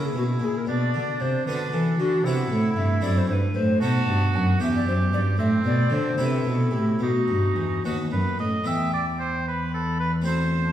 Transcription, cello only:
Already playing: C#3
0.16 B2
0.42 A#2
0.68 B2
0.96 D3
1.21 C3
1.47 D3
1.74 E3
1.99 D3
2.25 C3
2.51 A2
2.77 G2
3.04 F#2
3.30 G2
3.55 A2
3.82 B2
4.08 G2
4.34 F#2
4.60 E2
4.86 F#2
5.13 G2
5.40 A2
5.66 B2
5.92 D3
6.19 C3
6.46 B2
6.74 A2
7.02 B2
7.29 G2
7.57 E2
7.85 D#2
8.13 F#2
8.40 A2
8.68 E2

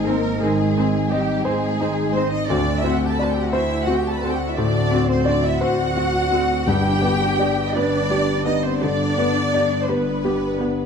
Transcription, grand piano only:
Already playing: G#2 C4 D#4 C5 D#5
0.07 C4
0.42 D#3
0.78 C4
1.12 D#5
1.45 C5
1.80 D#4
2.14 C4
2.50 D2
2.85 C4
3.19 D5
3.53 C5
3.87 F#4
4.23 C4
4.58 A2
4.91 C4
5.25 D5
5.61 C5
5.97 F#4
6.32 C4
6.67 G2
7.02 B3
7.39 D5
7.76 B4
8.11 G4
8.46 B3
8.84 D3
9.18 B3
9.54 D5
9.89 B4
10.25 G4
10.61 B3

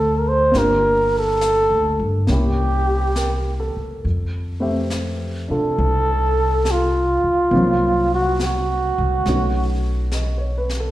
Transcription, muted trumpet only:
Already playing: A4
0.19 A#4
0.28 C5
0.58 A#4
1.19 A4
2.33 G4
5.53 A4
6.71 F4
8.14 F#4
8.45 F#4

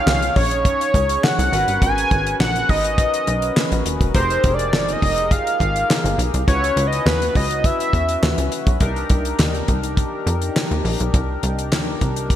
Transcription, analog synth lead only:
0.07 F5
0.36 C#5
1.24 F#5
1.82 G#5
2.40 F#5
2.69 D#5
4.15 C5
4.54 D5
4.93 D#5
5.31 F5
6.48 C#5
6.87 D#5
7.07 B4
7.36 D#5
7.65 E5

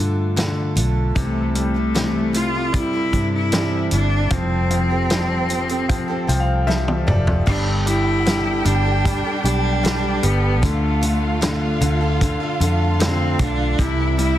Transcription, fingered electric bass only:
Already playing: G2
0.76 B1
1.16 C2
3.13 G2
3.92 G1
4.31 F1
6.28 C2
7.07 F1
7.47 G1
8.65 G1
9.44 B1
10.23 G1
10.63 D2
11.81 D2
12.60 F2
13.39 B1
13.79 C2

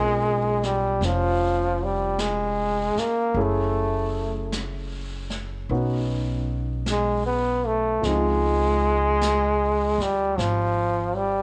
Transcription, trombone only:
Already playing: G#3
0.64 G3
1.05 F3
1.84 G3
2.20 G#3
2.98 A#3
3.42 A3
6.90 G#3
7.26 B3
7.66 A3
8.05 G#3
10.02 G3
10.38 F3
11.15 G3

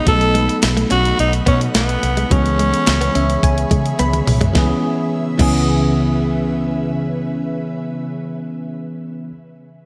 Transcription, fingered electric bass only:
0.07 B1
0.63 B1
0.91 B1
1.19 B1
1.47 B2
1.75 B1
2.03 C2
2.31 C#2
2.87 C#2
3.16 C#2
3.43 C#2
3.71 C#3
4.00 C#2
4.28 C2
4.55 C#2
5.39 C#2

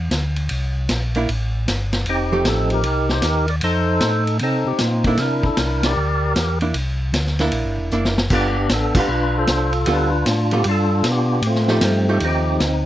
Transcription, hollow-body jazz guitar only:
1.16 A#3 D4 E4
2.32 F3 A3 D#4 G4
5.07 A#3 D4 E4
6.62 A#3 D4 E4
7.40 A#3 D4 E4
7.92 A#3 D4 E4
8.32 G3 B3 F4 A4
8.96 G3 B3 F4 A4
9.87 G3 B3 F4 A4
10.53 G3 B3 F4 A4
11.69 F3 A3 D#4 G4
12.09 F3 A3 D#4 G4

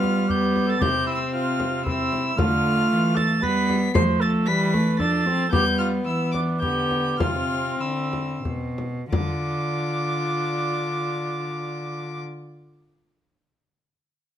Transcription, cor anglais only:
Already playing: F4
0.28 G4
0.67 A4
0.80 G4
1.07 E4
1.33 F4
1.85 E4
2.37 F4
3.16 A4
3.42 B4
3.95 C5
4.21 A4
4.48 B4
5.00 A4
5.52 G4
5.79 F4
6.06 E4
6.34 D4
6.61 G4
7.20 F4
7.80 E4
9.13 D4

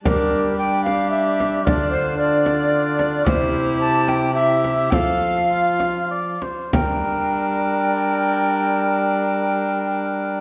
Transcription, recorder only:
0.05 A#4
0.58 G5
0.84 F5
1.10 E5
1.65 D5
1.91 C5
2.18 D5
3.26 C5
3.80 A5
4.09 G5
4.34 E5
4.90 F5 G5
6.73 G5

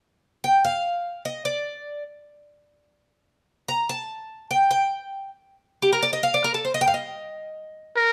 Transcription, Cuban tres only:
0.44 G5
0.65 F5
1.25 D#5
1.45 D5
3.68 A#5
3.89 A5
4.51 G5
4.71 G5
5.82 G4
5.93 A#4
6.03 D5
6.13 D#5
6.23 F5
6.34 D5
6.44 A#4
6.54 A4
6.65 C5
6.74 D#5
6.81 G5
6.87 F5
6.94 D#5

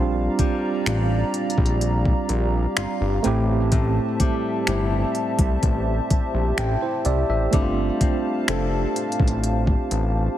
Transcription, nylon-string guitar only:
0.39 G3
0.87 G3 D4 F4
2.77 F4
3.25 A2
3.72 A2
4.20 G3
4.68 G3 C4 E4
6.58 E4
7.53 G3
8.01 C4
8.48 C4 F4 A4

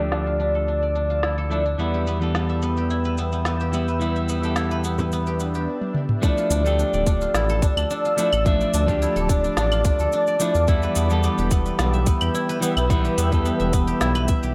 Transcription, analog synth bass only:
Already playing: D2
1.78 E2
6.50 D2
6.94 D1
7.34 A1
7.77 D2
8.33 A1
8.74 D2
9.16 D1
9.57 A1
9.99 D2
10.55 E2
10.96 E2
11.38 E1
11.79 B1
12.22 E2
12.77 B1
13.18 E2
13.60 E1
14.01 B1
14.44 B1

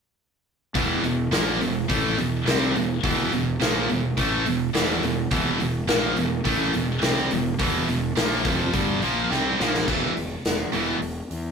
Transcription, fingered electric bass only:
0.75 E1
1.04 E1
1.33 A#1
1.61 E1
1.90 A1
2.18 E1
2.47 C2
2.75 E1
3.04 E1
3.32 E1
3.60 A#1
3.89 E1
4.17 A1
4.45 E1
4.74 E1
5.02 E1
5.31 E1
5.61 E1
5.89 A#1
6.18 E1
6.46 A1
6.74 E1
7.03 C2
7.31 E1
7.60 E1
7.87 E1
8.16 A#1
8.45 F1
8.74 G1
9.03 A#1
9.30 C2
9.59 A#1
9.88 E1
10.16 E1
10.45 E1
10.73 E1
11.02 E1
11.31 E2

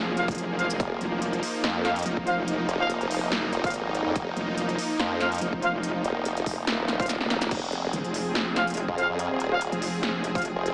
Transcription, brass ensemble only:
0.17 F4 C5 F5
0.59 F4 C5 F5
1.85 F4 C5 F5
2.27 F4 C5 F5
2.80 F4 C5 F5
3.64 F4 C5 F5
5.20 F4 C5 F5
5.62 F4 C5 F5
7.00 F4 C5 F5
8.56 F4 C5 F5
8.98 F4 C5 F5
9.51 F4 C5 F5
10.35 F4 C5 F5

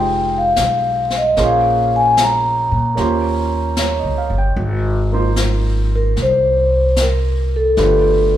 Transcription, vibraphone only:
Already playing: G5
0.38 F5
1.17 D#5
1.44 F5
1.96 G#5
5.95 A#4
6.22 C5
7.02 A#4
7.56 A4

